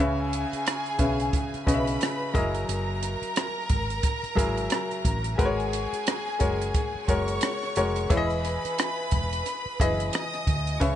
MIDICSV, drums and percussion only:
0, 0, Header, 1, 2, 480
1, 0, Start_track
1, 0, Tempo, 677201
1, 1902, Time_signature, 4, 2, 24, 8
1, 7766, End_track
2, 0, Start_track
2, 0, Title_t, "Drums"
2, 233, Note_on_c, 9, 42, 64
2, 304, Note_off_c, 9, 42, 0
2, 377, Note_on_c, 9, 42, 43
2, 448, Note_off_c, 9, 42, 0
2, 471, Note_on_c, 9, 42, 81
2, 480, Note_on_c, 9, 37, 92
2, 542, Note_off_c, 9, 42, 0
2, 550, Note_off_c, 9, 37, 0
2, 609, Note_on_c, 9, 42, 29
2, 679, Note_off_c, 9, 42, 0
2, 700, Note_on_c, 9, 42, 60
2, 703, Note_on_c, 9, 36, 83
2, 771, Note_off_c, 9, 42, 0
2, 774, Note_off_c, 9, 36, 0
2, 848, Note_on_c, 9, 42, 43
2, 919, Note_off_c, 9, 42, 0
2, 944, Note_on_c, 9, 36, 83
2, 945, Note_on_c, 9, 42, 70
2, 1015, Note_off_c, 9, 36, 0
2, 1015, Note_off_c, 9, 42, 0
2, 1091, Note_on_c, 9, 42, 31
2, 1162, Note_off_c, 9, 42, 0
2, 1184, Note_on_c, 9, 36, 81
2, 1193, Note_on_c, 9, 42, 69
2, 1255, Note_off_c, 9, 36, 0
2, 1264, Note_off_c, 9, 42, 0
2, 1328, Note_on_c, 9, 42, 43
2, 1398, Note_off_c, 9, 42, 0
2, 1424, Note_on_c, 9, 42, 75
2, 1439, Note_on_c, 9, 37, 92
2, 1495, Note_off_c, 9, 42, 0
2, 1510, Note_off_c, 9, 37, 0
2, 1664, Note_on_c, 9, 36, 98
2, 1666, Note_on_c, 9, 42, 67
2, 1735, Note_off_c, 9, 36, 0
2, 1737, Note_off_c, 9, 42, 0
2, 1804, Note_on_c, 9, 42, 44
2, 1875, Note_off_c, 9, 42, 0
2, 1906, Note_on_c, 9, 42, 83
2, 1977, Note_off_c, 9, 42, 0
2, 2144, Note_on_c, 9, 42, 67
2, 2215, Note_off_c, 9, 42, 0
2, 2287, Note_on_c, 9, 42, 44
2, 2358, Note_off_c, 9, 42, 0
2, 2382, Note_on_c, 9, 42, 85
2, 2391, Note_on_c, 9, 37, 102
2, 2453, Note_off_c, 9, 42, 0
2, 2461, Note_off_c, 9, 37, 0
2, 2618, Note_on_c, 9, 42, 61
2, 2621, Note_on_c, 9, 36, 83
2, 2689, Note_off_c, 9, 42, 0
2, 2692, Note_off_c, 9, 36, 0
2, 2766, Note_on_c, 9, 42, 42
2, 2836, Note_off_c, 9, 42, 0
2, 2857, Note_on_c, 9, 42, 76
2, 2860, Note_on_c, 9, 36, 82
2, 2928, Note_off_c, 9, 42, 0
2, 2931, Note_off_c, 9, 36, 0
2, 3004, Note_on_c, 9, 42, 33
2, 3075, Note_off_c, 9, 42, 0
2, 3100, Note_on_c, 9, 36, 78
2, 3108, Note_on_c, 9, 42, 69
2, 3170, Note_off_c, 9, 36, 0
2, 3179, Note_off_c, 9, 42, 0
2, 3241, Note_on_c, 9, 42, 38
2, 3312, Note_off_c, 9, 42, 0
2, 3332, Note_on_c, 9, 42, 80
2, 3347, Note_on_c, 9, 37, 91
2, 3402, Note_off_c, 9, 42, 0
2, 3418, Note_off_c, 9, 37, 0
2, 3481, Note_on_c, 9, 42, 31
2, 3552, Note_off_c, 9, 42, 0
2, 3578, Note_on_c, 9, 36, 73
2, 3579, Note_on_c, 9, 42, 67
2, 3649, Note_off_c, 9, 36, 0
2, 3650, Note_off_c, 9, 42, 0
2, 3715, Note_on_c, 9, 42, 43
2, 3786, Note_off_c, 9, 42, 0
2, 3820, Note_on_c, 9, 36, 106
2, 3822, Note_on_c, 9, 42, 75
2, 3891, Note_off_c, 9, 36, 0
2, 3893, Note_off_c, 9, 42, 0
2, 3967, Note_on_c, 9, 42, 29
2, 4038, Note_off_c, 9, 42, 0
2, 4063, Note_on_c, 9, 42, 73
2, 4134, Note_off_c, 9, 42, 0
2, 4207, Note_on_c, 9, 42, 42
2, 4278, Note_off_c, 9, 42, 0
2, 4300, Note_on_c, 9, 42, 86
2, 4309, Note_on_c, 9, 37, 111
2, 4371, Note_off_c, 9, 42, 0
2, 4380, Note_off_c, 9, 37, 0
2, 4536, Note_on_c, 9, 42, 61
2, 4542, Note_on_c, 9, 36, 82
2, 4607, Note_off_c, 9, 42, 0
2, 4613, Note_off_c, 9, 36, 0
2, 4688, Note_on_c, 9, 42, 47
2, 4759, Note_off_c, 9, 42, 0
2, 4780, Note_on_c, 9, 42, 71
2, 4781, Note_on_c, 9, 36, 83
2, 4851, Note_off_c, 9, 42, 0
2, 4852, Note_off_c, 9, 36, 0
2, 5020, Note_on_c, 9, 36, 81
2, 5022, Note_on_c, 9, 42, 65
2, 5091, Note_off_c, 9, 36, 0
2, 5093, Note_off_c, 9, 42, 0
2, 5159, Note_on_c, 9, 42, 41
2, 5229, Note_off_c, 9, 42, 0
2, 5251, Note_on_c, 9, 42, 82
2, 5266, Note_on_c, 9, 37, 98
2, 5322, Note_off_c, 9, 42, 0
2, 5337, Note_off_c, 9, 37, 0
2, 5406, Note_on_c, 9, 37, 30
2, 5477, Note_off_c, 9, 37, 0
2, 5498, Note_on_c, 9, 42, 69
2, 5569, Note_off_c, 9, 42, 0
2, 5641, Note_on_c, 9, 42, 46
2, 5712, Note_off_c, 9, 42, 0
2, 5743, Note_on_c, 9, 42, 76
2, 5744, Note_on_c, 9, 36, 107
2, 5814, Note_off_c, 9, 36, 0
2, 5814, Note_off_c, 9, 42, 0
2, 5884, Note_on_c, 9, 42, 28
2, 5955, Note_off_c, 9, 42, 0
2, 5986, Note_on_c, 9, 42, 75
2, 6057, Note_off_c, 9, 42, 0
2, 6130, Note_on_c, 9, 42, 49
2, 6201, Note_off_c, 9, 42, 0
2, 6226, Note_on_c, 9, 42, 84
2, 6235, Note_on_c, 9, 37, 100
2, 6297, Note_off_c, 9, 42, 0
2, 6306, Note_off_c, 9, 37, 0
2, 6459, Note_on_c, 9, 42, 59
2, 6465, Note_on_c, 9, 36, 84
2, 6530, Note_off_c, 9, 42, 0
2, 6536, Note_off_c, 9, 36, 0
2, 6610, Note_on_c, 9, 42, 46
2, 6681, Note_off_c, 9, 42, 0
2, 6705, Note_on_c, 9, 42, 80
2, 6776, Note_off_c, 9, 42, 0
2, 6945, Note_on_c, 9, 36, 83
2, 6952, Note_on_c, 9, 42, 66
2, 7016, Note_off_c, 9, 36, 0
2, 7023, Note_off_c, 9, 42, 0
2, 7088, Note_on_c, 9, 42, 41
2, 7159, Note_off_c, 9, 42, 0
2, 7180, Note_on_c, 9, 42, 84
2, 7195, Note_on_c, 9, 37, 94
2, 7250, Note_off_c, 9, 42, 0
2, 7266, Note_off_c, 9, 37, 0
2, 7325, Note_on_c, 9, 42, 29
2, 7329, Note_on_c, 9, 37, 31
2, 7396, Note_off_c, 9, 42, 0
2, 7400, Note_off_c, 9, 37, 0
2, 7422, Note_on_c, 9, 36, 78
2, 7423, Note_on_c, 9, 42, 70
2, 7493, Note_off_c, 9, 36, 0
2, 7494, Note_off_c, 9, 42, 0
2, 7563, Note_on_c, 9, 42, 45
2, 7634, Note_off_c, 9, 42, 0
2, 7663, Note_on_c, 9, 42, 80
2, 7664, Note_on_c, 9, 36, 98
2, 7734, Note_off_c, 9, 42, 0
2, 7735, Note_off_c, 9, 36, 0
2, 7766, End_track
0, 0, End_of_file